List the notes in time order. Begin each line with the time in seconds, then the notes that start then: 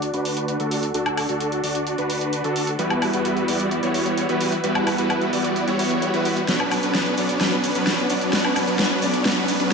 Already playing: D2 D4 F#4 D5
0.02 closed hi-hat
0.14 D2 D4 F#4 B4, closed hi-hat
0.25 open hi-hat
0.37 closed hi-hat
0.48 closed hi-hat
0.60 D2 D4 F#4 A4, closed hi-hat
0.71 open hi-hat
0.83 closed hi-hat
0.94 D2 D4 F#4 A4, closed hi-hat
1.06 closed hi-hat, high woodblock
1.17 open hi-hat, high woodblock
1.29 D2 D4 F#4 A4, closed hi-hat
1.40 closed hi-hat
1.52 closed hi-hat
1.64 D2 D4 F#4 D5, open hi-hat
1.75 closed hi-hat
1.87 closed hi-hat
1.98 D2 D4 F#4 B4, closed hi-hat
2.10 open hi-hat
2.21 closed hi-hat
2.33 closed hi-hat
2.44 D2 D4 F#4 A4, closed hi-hat
2.56 open hi-hat
2.67 closed hi-hat
2.79 E2 G3 B3 E4 F#4 B4, closed hi-hat
2.90 closed hi-hat, high woodblock
3.02 open hi-hat, high woodblock
3.13 E2 G3 B3 E4 F#4 B4, closed hi-hat
3.25 closed hi-hat
3.37 closed hi-hat
3.48 E2 G3 B3 E4 F#4 D5, open hi-hat
3.60 closed hi-hat
3.71 closed hi-hat
3.83 E2 G3 B3 E4 F#4 C#5, closed hi-hat
3.94 open hi-hat
4.06 closed hi-hat
4.18 closed hi-hat
4.29 E2 G3 B3 E4 F#4 B4, closed hi-hat
4.41 open hi-hat
4.52 closed hi-hat
4.64 E2 G3 B3 E4 F#4 B4, closed hi-hat
4.75 closed hi-hat, high woodblock
4.87 open hi-hat, high woodblock
4.98 E2 G3 B3 E4 F#4 B4, closed hi-hat
5.10 closed hi-hat, high woodblock
5.21 closed hi-hat
5.33 E2 G3 B3 E4 F#4 D5, open hi-hat
5.45 closed hi-hat
5.56 closed hi-hat
5.68 E2 G3 B3 E4 F#4 C#5, closed hi-hat
5.79 open hi-hat
5.91 closed hi-hat
6.02 closed hi-hat
6.14 E2 G3 B3 E4 F#4 B4, closed hi-hat
6.25 open hi-hat
6.37 closed hi-hat
6.48 B1 F#3 B3 C#4 D4 B4, snare, closed hi-hat, shaker
6.60 closed hi-hat, high woodblock
6.71 open hi-hat, high woodblock, shaker
6.83 B1 F#3 B3 C#4 D4 B4, closed hi-hat, shaker
6.94 snare, closed hi-hat, shaker
7.06 closed hi-hat
7.17 B1 F#3 B3 C#4 D4 D5, open hi-hat, shaker
7.29 closed hi-hat, shaker
7.41 B1 F#3 B3 C#4 D4 B4, snare, closed hi-hat, shaker
7.52 closed hi-hat
7.64 open hi-hat, shaker
7.75 B1 F#3 B3 C#4 D4 B4, closed hi-hat, shaker
7.87 snare, closed hi-hat, shaker
7.98 closed hi-hat, shaker
8.10 B1 F#3 B3 C#4 D4 D5, open hi-hat, shaker
8.21 closed hi-hat, shaker
8.33 B1 F#3 B3 C#4 D4 B4, snare, closed hi-hat, shaker
8.45 closed hi-hat, high woodblock
8.56 open hi-hat, high woodblock, shaker
8.68 B1 F#3 B3 C#4 D4 B4, closed hi-hat, shaker
8.79 snare, closed hi-hat, shaker
8.91 closed hi-hat
9.02 B1 F#3 B3 C#4 D4 D5, open hi-hat, shaker
9.14 closed hi-hat, shaker
9.25 B1 F#3 B3 C#4 D4 B4, snare, closed hi-hat, shaker
9.37 closed hi-hat
9.48 open hi-hat, shaker
9.60 B1 F#3 B3 C#4 D4 B4, closed hi-hat, shaker